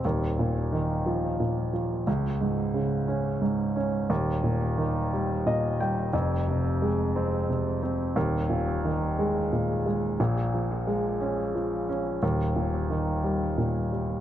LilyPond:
\new Staff \with { instrumentName = "Grand piano" } { \clef bass \time 6/8 \key ees \mixolydian \tempo 4. = 59 <ees,, ees,>8 bes,8 ees8 f8 bes,8 f8 | des,8 aes,8 des8 des'8 aes,8 des'8 | <ees,, ees,>8 bes,8 ees8 g8 <bes, ees''>8 <g g''>8 | <f,, f,>8 c8 aes8 c'8 c8 c'8 |
<ees,, ees,>8 bes,8 ees8 aes8 bes,8 aes8 | <bes,, bes,>8 f8 aes8 des'8 f8 des'8 | <ees,, ees,>8 bes,8 ees8 g8 bes,8 g8 | }